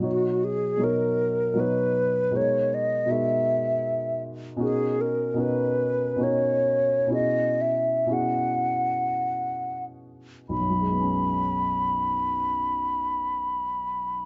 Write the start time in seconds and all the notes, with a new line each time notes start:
0.00 B2 F#3 D#4 F#4
0.04 F#4 C#5
0.44 G#4
0.77 B2 F#3 D#4 F#4
0.82 A#4 C#5
1.54 B2 F#3 D#4 F#4
1.59 B4 C#5
2.31 B2 G#3 D#4 F#4
2.36 A#4 C#5
2.74 D#5
3.06 B2 G#3 D#4
3.10 F#4 A#4 E5
4.57 B2 C#4 D#4 F#4
4.61 G#4 A#4
5.01 A#4
5.34 B2 C#4 D#4 F#4
5.39 A#4 B4
6.16 B2 C#4 D#4
6.21 F#4 A#4 C#5
7.07 B2 C#4 E4
7.11 F#4 G#4 D#5
7.61 E5
8.06 B2 C#4 E4 F#4
8.11 G#4 F#5
10.49 B1 B5
10.60 F#2
10.70 F#3
10.80 G#3
10.91 B3
11.01 C#4